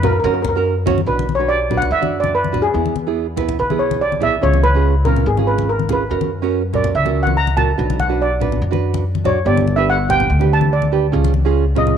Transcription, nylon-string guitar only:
0.02 C#4 F#4 B4
0.24 C#4 F#4 A#4
0.55 C#4 F#4 A#4
0.86 C#4 F#4 C#5
1.07 D4 F#4 B4
1.39 D4 F#4 B4
1.70 D4 F#4 B4
2.01 D4 F#4 D5
2.52 D4 F#4 B4
2.74 B3 E4 G#4
3.07 B3 E4 G#4
3.37 B3 E4 B4
3.70 B3 E4 G#4
4.20 B3 E4 G#4
4.42 C#4 F4 G#4
4.75 C#4 F4 G#4
5.06 C#4 F4 A#4
5.37 C#4 F4 G#4
5.89 C#4 F4 G#4
6.10 C#4 F#4 A#4
6.42 C#4 F#4 A#4
6.73 C#4 F#4 A#4
7.05 C#4 F#4 A#4
7.57 C#4 F#4 A#4
7.78 D4 F#4 B4
8.09 D4 F#4 B4
8.40 D4 F#4 B4
8.71 D4 F#4 B4
9.24 D4 F#4 D5
9.45 D4 G4 B4
9.76 D4 G4 B4
10.08 D4 G4 B4
10.39 D4 G4 B4
10.92 D4 G4 B4
11.12 C#4 F4 G#4
11.45 C#4 F4 G#4
11.75 C#4 F4 G#4

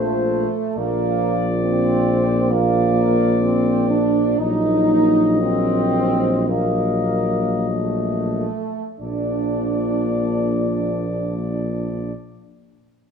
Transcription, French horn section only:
Already playing: A3
0.77 A#3
1.62 C4
2.51 A#3
3.42 C4
3.90 D4
4.39 D#4
5.41 C4
6.49 A#3
7.69 A3
9.00 D4

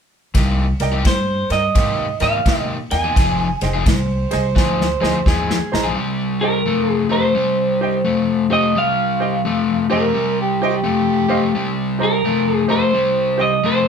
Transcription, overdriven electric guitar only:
0.34 C3 A#3 D#4 G4
0.92 C3 A#3 D#4 G4
1.05 muted overdriven electric guitar stroke
1.75 C3 A#3 D#4 G4
2.21 C3 A#3 D#4 G4
2.46 C3 A#3 D#4 G4
3.04 C3 A#3 D#4 G4
3.17 F3 C4 D#4 G#4
3.74 F3 C4 D#4 G#4
3.87 muted overdriven electric guitar stroke
4.56 F3 C4 D#4 G#4
5.01 F3 C4 D#4 G#4
5.26 F3 C4 D#4 G#4
5.84 F3 C4 D#4 G#4
5.95 C3 G3
6.66 C3 A3
7.09 C3 A3
7.35 C3 G3
8.05 C3 A3
8.50 C3 A3
8.75 C3 G3
9.45 C3 A3
9.90 C3 A3
10.14 C3 G3
10.84 C3 A3
11.28 C3 A3
11.55 C3 G3
12.25 C3 A3
12.69 C3 A3
12.93 C3 G3
13.64 C3 A3

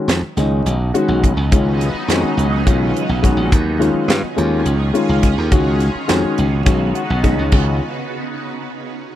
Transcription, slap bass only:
0.08 F2
0.22 muted slap bass stroke
0.37 C#2
0.66 B1
1.08 B1
1.37 C#2
1.52 C#2
1.94 muted slap bass stroke
2.08 F2
2.24 muted slap bass stroke
2.37 C#2
2.67 B1
3.09 B1
3.37 A#1
3.53 D#2
3.94 muted slap bass stroke
4.08 G2
4.23 muted slap bass stroke
4.38 D#2
4.65 C#2
5.09 C#2
5.38 D#2
5.52 C#2
5.95 muted slap bass stroke
6.10 F2
6.23 muted slap bass stroke
6.38 C#2
6.67 B1
7.10 B1
7.39 C#2
7.52 C#2

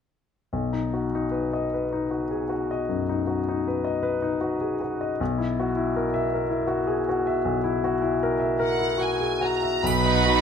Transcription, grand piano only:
0.53 B1
0.73 D#4
0.93 F#4
1.15 D#4
1.31 B4
1.53 D#5
1.74 B4
1.93 D#4
2.11 F#4
2.31 G#4
2.49 F#4
2.71 D#5
2.89 F#2
3.09 D#4
3.27 F#4
3.49 D#4
3.68 B4
3.84 D#5
4.03 B4
4.22 D#4
4.41 F#4
4.61 G#4
4.81 F#4
5.01 D#5
5.21 B1
5.38 E4
5.60 F#4
5.76 E4
5.96 A#4
6.14 E5
6.34 A#4
6.49 E4
6.67 F#4
6.87 G#4
7.09 F#4
7.27 E5
7.45 B1
7.64 E4
7.84 F#4
8.02 E4
8.23 A#4
8.40 E5
8.59 A#4
8.79 E4
8.98 F#4
9.20 G#4
9.41 F#4
9.63 E5
9.83 B1
10.06 D#5
10.26 F#4

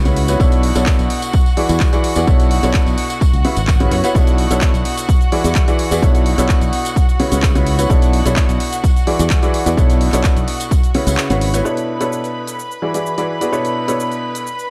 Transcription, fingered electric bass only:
Already playing: C#2
0.40 B1
0.76 B1
0.99 B1
1.69 E2
2.16 E2
2.27 B1
2.63 B1
2.87 B1
3.33 C#2
3.57 G#1
3.92 F#2
4.15 B1
4.51 B1
4.74 B1
5.44 E2
5.91 E2
6.02 B1
6.38 B1
6.62 B1
7.32 C#2
7.90 B1
8.26 B1
8.49 B1
9.19 E2
9.66 E2
9.77 B1
10.13 B1
10.36 B1
11.07 C#2
11.30 G#1

